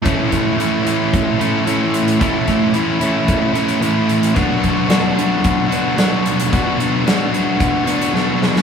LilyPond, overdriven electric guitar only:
\new Staff \with { instrumentName = "Overdriven electric guitar" } { \time 4/4 \key a \mixolydian \tempo 4 = 111 <a, e a cis' e'>8 <a cis' e'>8 <e a cis' e'>8 <a cis' e'>4 <a cis' e'>8 <a, e a cis' e'>4 | <a, e a cis' e'>8 <a cis' e'>8 <e a cis' e'>8 <a cis' e'>4 <a cis' e'>8 <a, e a cis' e'>4 | <b, fis b d' fis'>8 <b d' fis'>8 <fis b d' fis'>8 <b d' fis'>4 <b d' fis'>8 <b, fis b d' fis'>4 | <b, fis b d' fis'>8 <b d' fis'>8 <fis b d' fis'>8 <b d' fis'>4 <b d' fis'>8 <b, fis b d' fis'>4 | }